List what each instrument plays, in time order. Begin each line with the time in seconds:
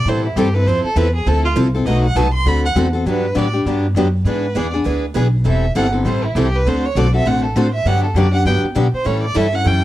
0.05 upright bass A2, steel-string acoustic guitar E3 G3 C4 E4 A4, violin C5
0.26 violin E4
0.36 upright bass G2, steel-string acoustic guitar E3 G3 C4 E4 A4, violin G4
0.54 steel-string acoustic guitar C4 E4 A4, violin B4
0.66 upright bass F2, steel-string acoustic guitar F3 C4 E4 A4, violin C5
0.84 violin A4, muted upright bass stroke
0.96 upright bass E2, steel-string acoustic guitar F3 C4 E4 A4, violin B4
1.15 violin G#4
1.26 upright bass D2, steel-string acoustic guitar F3 C4 E4 A4, violin A4
1.45 violin F4
1.56 upright bass C2, steel-string acoustic guitar F3 C4 E4 A4
1.75 steel-string acoustic guitar C4 E4 A4
1.85 upright bass B1, steel-string acoustic guitar B2 F#3 A3 D#4 F#4 B4, violin D#5
2.05 violin F#5
2.15 upright bass C2, steel-string acoustic guitar B2 F#3 A3 D#4 F#4 B4, violin A5
2.34 violin C6
2.45 upright bass D2, steel-string acoustic guitar D3 A3 C4 F#4 A4, violin B5
2.65 violin F#5
2.75 upright bass E2, steel-string acoustic guitar D3 A3 C4 F#4 A4
2.93 steel-string acoustic guitar C4 F#4 A4
3.06 upright bass G2, steel-string acoustic guitar D3 F#3 B3 D4 G4, violin B4
3.35 upright bass A2, steel-string acoustic guitar D3 F#3 B3 D4 G4, violin D5
3.53 steel-string acoustic guitar B3 D4 G4
3.65 upright bass G2, steel-string acoustic guitar D3 F#3 B3 D4 G4
3.95 upright bass F#2, steel-string acoustic guitar D3 F#3 B3 D4 G4
4.25 upright bass G#2, steel-string acoustic guitar E3 B3 D4 G#4 B4, violin B4
4.55 upright bass E2, steel-string acoustic guitar E3 B3 D4 G#4 B4, violin D5
4.74 steel-string acoustic guitar B3 D4 G#4
4.85 upright bass D2, steel-string acoustic guitar E3 B3 D4 G#4 B4
5.15 upright bass B1, steel-string acoustic guitar E3 B3 D4 G#4 B4
5.45 upright bass E1, steel-string acoustic guitar E3 G3 C4 E4 A4, violin E5
5.75 upright bass G1, steel-string acoustic guitar E3 G3 C4 E4 A4, violin F#5
5.92 steel-string acoustic guitar C4 E4 A4
6.05 upright bass A1, steel-string acoustic guitar E3 G3 C4 E4 A4, violin C5
6.24 violin E4
6.35 upright bass C2, steel-string acoustic guitar E3 G3 C4 E4 A4, violin G4
6.56 violin B4
6.65 upright bass D2, steel-string acoustic guitar D3 A3 C4 F#4 A4, violin C5
6.86 violin C#5
6.95 upright bass B1, steel-string acoustic guitar D3 A3 C4 F#4 A4, violin D5
7.14 steel-string acoustic guitar C4 F#4 A4, violin E5
7.25 upright bass A1, steel-string acoustic guitar D3 A3 C4 F#4 A4, violin F#5
7.45 violin A4
7.55 upright bass A2, steel-string acoustic guitar D3 A3 C4 F#4 A4, violin C5
7.74 violin E5
7.85 upright bass G2, steel-string acoustic guitar D3 F#3 B3 D4 G4, violin F#5
8.04 violin A4
8.14 upright bass F#2, steel-string acoustic guitar D3 F#3 B3 D4 G4, violin D5
8.33 steel-string acoustic guitar B3 D4 G4, violin F#5
8.45 upright bass G2, steel-string acoustic guitar D3 F#3 B3 D4 G4, violin G5
8.63 muted upright bass stroke
8.75 upright bass B2, steel-string acoustic guitar D3 F#3 B3 D4 G4
8.93 violin C5, muted upright bass stroke
9.05 upright bass A2, steel-string acoustic guitar E3 G3 C#4 E4 A4, violin C#5
9.23 violin D5
9.35 upright bass G2, steel-string acoustic guitar E3 G3 C#4 E4 A4, violin E5
9.52 steel-string acoustic guitar C#4 E4 A4, violin F#5
9.65 upright bass F#2, steel-string acoustic guitar E3 G3 C#4 E4 A4, violin G5